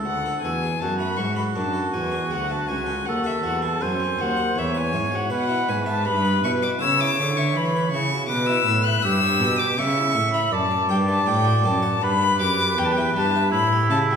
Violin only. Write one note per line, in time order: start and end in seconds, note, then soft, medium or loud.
0.06 0.41 F#5 medium
0.42 0.81 G#5 medium
0.80 0.98 A5 medium
0.99 1.18 B5 medium
1.17 1.35 C#6 medium
1.36 1.44 B5 medium
1.56 1.93 A5 medium
1.95 2.33 G#5 medium
2.32 2.53 F#5 medium
2.51 2.69 A5 medium
2.68 3.07 G#5 medium
3.06 3.28 F#5 medium
3.26 3.44 E5 medium
3.45 3.63 F#5 medium
3.65 3.84 A5 medium
3.82 4.22 G#5 medium
4.21 4.60 F#5 medium
4.58 4.79 E5 medium
4.78 5.16 G#5 medium
5.15 5.33 F#5 medium
5.33 5.70 F#5 medium
5.69 5.87 G#5 medium
5.87 6.07 A5 medium
6.06 6.43 B5 loud
6.44 6.52 C#6 medium
6.62 6.70 D6 medium
6.80 7.02 E6 loud
7.01 7.39 D6 loud
7.37 7.58 C#6 medium
7.56 7.92 B5 medium
7.92 8.28 C#6 loud
8.29 8.48 D6 medium
8.47 8.87 E6 loud
8.85 9.04 F#6 loud
9.03 9.61 E6 loud
9.59 9.80 D6 loud
9.78 10.33 C#6 loud
10.34 10.55 B5 medium
10.53 10.89 A5 loud
10.90 10.97 G5 medium
11.09 11.29 A5 medium
11.27 11.66 G5 loud
11.65 12.04 A5 medium
12.03 12.40 B5 loud
12.41 12.80 D6 loud
12.78 12.86 G5 loud
12.85 12.94 A5 medium
12.92 13.15 G5 loud
13.16 13.52 A5 loud
13.53 13.90 B5 loud
13.90 13.98 A5 loud
14.10 14.16 G5 medium